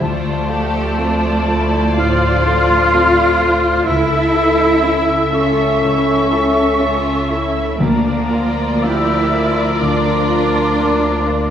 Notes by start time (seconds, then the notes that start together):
0.01 D2 F3 A3 F4 C5 D5 A5
0.49 F4 G4 A4
0.98 C4 F4 A4
1.48 F3 E4 A4
1.97 A2 D4 F4 F6
2.46 F4 A4
2.92 C4 F4 A4
3.40 F4 A4
3.87 C#2 C#4 E4 A4 E5 E6
4.34 E4 A4
4.83 C#4 E4 A4
5.33 C#4 F4 A4 E5 C#6
5.82 C#2 E4
6.32 E4 A4
6.80 C#4 F4 A4 E5
7.29 E4 A4
7.79 D2 D3 F3 A#3 D4 A#4 D5 A#5
8.30 F4 A#4
8.83 F3 A#3 E4 G4 A#4 E6
9.33 F3 F4 A#4
9.82 D2 D4 D6
10.31 F4 A#4
10.79 A#3 F4 A#4
11.27 F4 A#4